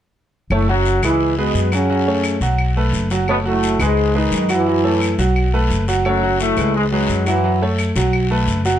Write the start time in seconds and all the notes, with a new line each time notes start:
0.50 F#1 A2 A3 A4 C#5, long guiro, claves
0.69 F#2 F#3 F#4 F#5
0.85 short guiro
1.03 C#2 E3 G#3 E4 G#4 B4, short guiro, claves
1.21 long guiro
1.38 B2 G#3 B3 G#4 B4
1.54 F#2, short guiro
1.72 C#3 F#3 C#4 F#4 F#5, short guiro, claves
1.90 F#3 F#4 F#5, long guiro
2.08 A3 A4 C#5
2.24 short guiro, claves
2.41 B1 F#3 F#4 F#5, short guiro
2.58 long guiro, claves
2.77 A3 A4 B4
2.93 F#1, short guiro
3.10 F#3 F#4 F#5, short guiro
3.28 B2 A3 B3 A4 C#5, long guiro, claves
3.45 A2 F#3 A3 F#4 F#5
3.63 short guiro
3.79 C#2 G#2 G#3 G#4 B4, short guiro, claves
3.97 long guiro
4.15 D#3 G#3 D#4 G#4 B4
4.32 F#2, short guiro
4.49 E3 F#3 E4 F#4 F#5, short guiro, claves
4.67 F#3 F#4 F#5, long guiro
4.84 A3 A4 C#5
5.01 short guiro, claves
5.18 B1 F#3 F#4 F#5, short guiro
5.36 long guiro, claves
5.54 A3 A4 B4
5.70 F#1, short guiro
5.88 F#3 F#4 F#5, short guiro
6.05 F#2 F#3 A3 A4 C#5, long guiro, claves
6.23 F#3 F#4 F#5
6.40 A2 A3, short guiro
6.57 C#2 G#3 G#4 B4, short guiro, claves
6.74 G#2 G#3, long guiro
6.92 F#2 F#3 G#3 G#4 B4
7.09 F#2, short guiro
7.26 E3 F#3 E4 F#4 F#5, short guiro, claves
7.44 F#3 F#4 F#5, long guiro
7.62 A3 A4 C#5
7.78 short guiro, claves
7.96 B1 F#3 F#4 F#5, short guiro
8.13 long guiro, claves
8.31 A3 A4 B4
8.47 F#1, short guiro
8.65 F#3 F#4 F#5, short guiro